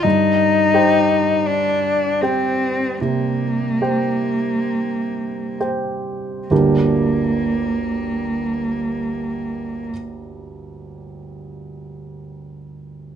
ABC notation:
X:1
M:4/4
L:1/8
Q:1/4=36
K:Gm
V:1 name="Grand piano"
G,, [Gcg]2 [Gcg] C, [Gcg]2 [Gcg] | [G,,,D,,G,B,DG]8 |]
V:2 name="Cello"
E2 D C B,3 z | B,8 |]